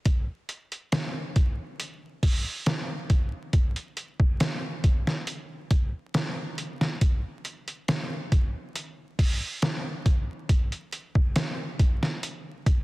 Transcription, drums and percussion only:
0.05 kick, closed hi-hat
0.49 closed hi-hat
0.72 closed hi-hat
0.92 snare, closed hi-hat
1.36 kick, closed hi-hat
1.80 closed hi-hat
2.23 kick, open hi-hat
2.66 snare, closed hi-hat
3.10 kick, closed hi-hat
3.53 kick, closed hi-hat
3.76 closed hi-hat
3.97 closed hi-hat
4.20 kick
4.40 snare, closed hi-hat
4.84 kick, closed hi-hat
5.07 snare
5.27 closed hi-hat
5.71 kick, closed hi-hat
6.14 snare, closed hi-hat
6.58 closed hi-hat
6.81 snare
7.01 kick, closed hi-hat
7.45 closed hi-hat
7.68 closed hi-hat
7.88 snare, closed hi-hat
8.32 kick, closed hi-hat
8.75 closed hi-hat
9.19 kick, open hi-hat
9.62 snare, closed hi-hat
10.06 kick, closed hi-hat
10.49 kick, closed hi-hat
10.72 closed hi-hat
10.93 closed hi-hat
11.15 kick
11.36 snare, closed hi-hat
11.79 kick, closed hi-hat
12.03 snare
12.23 closed hi-hat
12.66 kick, closed hi-hat

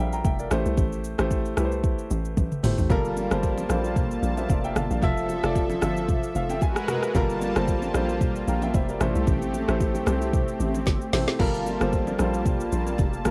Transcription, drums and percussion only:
0.13 shaker
0.25 kick, shaker
0.39 shaker
0.51 cross-stick, shaker
0.66 shaker
0.77 kick, shaker
0.92 shaker
1.04 shaker
1.19 cross-stick, shaker
1.31 kick, shaker
1.45 shaker
1.57 cross-stick, shaker
1.72 shaker
1.84 kick, shaker
1.99 shaker
2.10 shaker
2.25 shaker
2.37 kick, high tom, shaker
2.52 mid tom, shaker
2.64 mid tom, open hi-hat, shaker
2.78 floor tom, shaker
2.90 kick, low conga, shaker
3.05 shaker
3.17 high bongo, low bongo, shaker
3.31 cross-stick, shaker
3.43 kick, high bongo, shaker
3.58 low bongo, shaker
3.69 cross-stick, low bongo, shaker
3.84 high bongo, shaker
3.96 kick, low conga, shaker
4.11 shaker
4.23 shaker
4.37 low bongo, shaker
4.49 kick, high bongo, shaker
4.64 shaker
4.76 cross-stick, low conga, shaker
4.91 shaker
5.03 kick, low conga, shaker
5.17 shaker
5.29 high bongo, low bongo, shaker
5.44 cross-stick, shaker
5.55 kick, high bongo, shaker
5.70 low bongo, shaker
5.81 cross-stick, low bongo, shaker
5.97 high bongo, shaker
6.09 kick, low conga, shaker
6.23 shaker
6.35 shaker
6.49 low bongo, shaker
6.61 kick, high bongo, shaker
6.76 cross-stick, shaker
6.88 cross-stick, low conga, shaker
7.03 cross-stick, shaker
7.15 kick, low conga, shaker
7.30 shaker
7.41 high bongo, low bongo, shaker
7.56 cross-stick, shaker
7.68 kick, high bongo, shaker
7.82 low bongo, shaker
7.94 cross-stick, low bongo, shaker
8.09 high bongo, shaker
8.21 kick, low conga, shaker
8.36 shaker
8.48 shaker
8.62 low bongo, shaker
8.74 kick, high bongo, shaker
8.89 shaker
9.01 cross-stick, low conga, shaker
9.15 shaker
9.27 kick, low conga, shaker
9.42 shaker
9.54 high bongo, low bongo, shaker
9.68 cross-stick, shaker
9.80 kick, high bongo, shaker
9.95 low bongo, shaker
10.06 cross-stick, low bongo, shaker
10.22 high bongo, shaker
10.33 kick, low conga, shaker
10.48 shaker
10.60 shaker
10.74 low bongo, shaker
10.86 kick, snare, high bongo, shaker
11.01 shaker
11.13 snare, open hi-hat, low conga, shaker
11.28 snare, shaker
11.40 kick, crash, low conga
11.54 shaker
11.66 high bongo, low bongo, shaker
11.81 cross-stick, shaker
11.93 kick, high bongo, shaker
12.07 low bongo, shaker
12.19 cross-stick, low bongo, shaker
12.34 high bongo, shaker
12.46 kick, low conga, shaker
12.60 shaker
12.72 shaker
12.87 low bongo, shaker
12.98 kick, high bongo, shaker
13.13 shaker
13.25 cross-stick, low conga, shaker

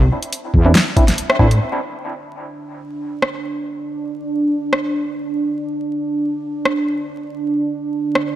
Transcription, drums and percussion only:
0.22 closed hi-hat
0.33 closed hi-hat
0.54 kick
0.75 snare, closed hi-hat
0.97 kick, closed hi-hat
1.08 snare, closed hi-hat
1.18 closed hi-hat
1.30 cross-stick
1.39 kick
1.51 closed hi-hat
3.22 cross-stick
4.73 cross-stick
6.65 cross-stick
8.15 cross-stick

